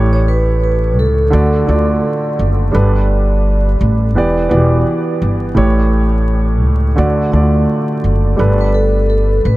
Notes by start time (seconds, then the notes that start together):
Already playing: A1 A2 A3 G4 C#5
0.13 C#5
0.28 B4
0.64 B4
0.98 C#2 A4
1.30 D2 D3 A3 F#4 D5
1.67 D2 D3 A3 F4 D5
1.76 F#4
2.39 F#1
2.72 G1 G3 D4 A4 B4
3.81 A1
4.15 E1 E3 B3 G4 D5
4.49 E1 E3 B3 F#4 D5
4.57 G4
5.22 G1
5.54 A1 A2 A3 G4 C#5
6.63 C#2
6.96 D2 D3 A3 F#4 D5
7.32 D2 D3 A3 F4 D5
7.41 F#4
8.04 F#1
8.36 G1 G3 D4 A4 B4
8.61 B4
8.74 A4
9.10 A4
9.45 A1 B4